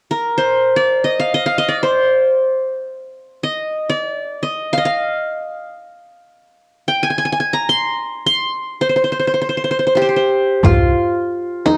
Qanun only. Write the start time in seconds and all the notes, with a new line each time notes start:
0.11 A#4
0.38 C5
0.76 D5
1.04 D#5
1.20 F5
1.34 D#5
1.46 F5
1.58 D#5
1.69 D5
1.83 C5
3.43 D#5
3.89 D5
4.43 D#5
4.73 F5
4.78 D#5
4.85 F5
6.88 G5
7.03 G#5
7.10 G#5
7.18 G#5
7.25 G#5
7.32 G#5
7.40 G#5
7.53 A#5
7.69 C6
8.26 C6
8.81 C5
8.89 C5
8.96 C5
9.04 C5
9.12 C5
9.19 C5
9.27 C5
9.34 C5
9.41 C5
9.49 C5
9.57 C5
9.64 C5
9.71 C5
9.79 C5
9.87 C5
9.95 G4 C5
10.02 C5
10.09 C5
10.16 C5
10.65 F4
11.66 D#4